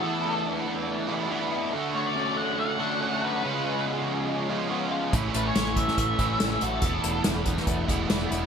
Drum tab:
HH |----------------|----------------|----------------|x-x-x-x-x-x-x-x-|
SD |----------------|----------------|----------------|----o--o----o---|
BD |----------------|----------------|----------------|o-----o-o-o-----|

HH |x-x-x-x-x-x-x-x-|
SD |----o--o----o---|
BD |o-----o-o-o-----|